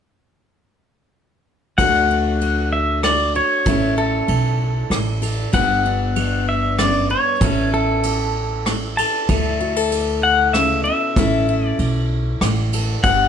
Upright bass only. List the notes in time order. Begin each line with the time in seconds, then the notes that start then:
1.78 D2
3.66 A1
4.28 B1
4.90 A1
5.54 G1
7.41 A1
9.29 D2
11.16 A1
11.79 B1
12.41 A1
13.04 G1